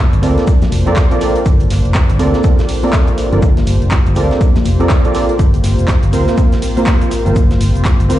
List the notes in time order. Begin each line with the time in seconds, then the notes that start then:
Already playing: A#3 D4 F4 C5 A5
0.13 G1, closed hi-hat
0.22 D2 C4 F4 A4 A#4 D5, open hi-hat, shaker
0.38 snare, closed hi-hat
0.47 kick, closed hi-hat, shaker
0.62 snare, closed hi-hat, high conga, low conga
0.72 F1, open hi-hat, high conga, shaker
0.86 C4 F4 A4 A#4 D5, closed hi-hat, low conga
0.96 kick, snare, clap, closed hi-hat, shaker
1.11 C4 F4 A4 A#4 D5, closed hi-hat
1.21 C4 F4 A4 A#4 D5, snare, open hi-hat, shaker
1.36 closed hi-hat
1.46 G1 G4, kick, closed hi-hat, shaker
1.60 closed hi-hat
1.70 G1, snare, open hi-hat, shaker
1.85 F1, closed hi-hat
1.95 kick, snare, clap, closed hi-hat, shaker
2.09 G1, closed hi-hat
2.19 D2 C4 F4 A4 A#4 D5, open hi-hat, shaker
2.34 snare, closed hi-hat
2.44 C4 F4 A4 A#4 D5, kick, closed hi-hat, shaker
2.59 snare, closed hi-hat
2.68 open hi-hat
2.83 C4 F4 A4 A#4 D5, closed hi-hat, high conga
2.93 kick, snare, clap, closed hi-hat, shaker
3.07 closed hi-hat
3.18 snare, open hi-hat, shaker
3.32 G1 C4 F4 A4 A#4 D5, closed hi-hat, low conga
3.42 kick, closed hi-hat, shaker
3.57 snare, closed hi-hat, high conga
3.67 G1, open hi-hat, shaker
3.82 F1, closed hi-hat
3.91 kick, snare, clap, closed hi-hat, shaker
4.06 G1, closed hi-hat
4.15 D2 C4 F4 A4 A#4 D5, open hi-hat, shaker
4.31 snare, closed hi-hat
4.41 kick, closed hi-hat, shaker
4.56 snare, closed hi-hat, high conga, low conga
4.65 F1, open hi-hat, high conga, shaker
4.80 C4 F4 A4 A#4 D5, closed hi-hat, low conga
4.89 kick, snare, clap, closed hi-hat, shaker
5.04 C4 F4 A4 A#4 D5, closed hi-hat
5.14 C4 F4 A4 A#4 D5, snare, open hi-hat, shaker
5.29 closed hi-hat
5.39 G1 C4, kick, closed hi-hat, cabasa, shaker
5.54 closed hi-hat, cabasa
5.64 G1, snare, open hi-hat, cabasa, shaker
5.79 F1, closed hi-hat, cabasa
5.88 kick, snare, clap, closed hi-hat, cabasa, shaker
6.03 G1, closed hi-hat, cabasa
6.12 D2 A#3 C4 F4 A#4 C5, open hi-hat, cabasa, shaker
6.28 snare, closed hi-hat, cabasa
6.37 A#3 C4 F4 A#4 C5, kick, closed hi-hat, cabasa, shaker
6.52 snare, closed hi-hat, cabasa
6.62 open hi-hat, cabasa
6.76 A#3 C4 F4 A#4 C5, closed hi-hat, high conga, cabasa
6.86 kick, snare, clap, closed hi-hat, cabasa, shaker
7.02 closed hi-hat, cabasa
7.10 snare, open hi-hat, cabasa, shaker
7.26 G1 A#3 C4 F4 A#4 C5, closed hi-hat, low conga, cabasa
7.36 G1, kick, closed hi-hat, cabasa, shaker
7.51 snare, closed hi-hat, high conga, cabasa
7.61 G1, open hi-hat, cabasa, shaker
7.75 F1, closed hi-hat, cabasa
7.85 kick, snare, clap, closed hi-hat, cabasa, shaker
8.00 G1, closed hi-hat, cabasa
8.09 D2 A#3 C4 F4 A#4 C5, open hi-hat, cabasa, shaker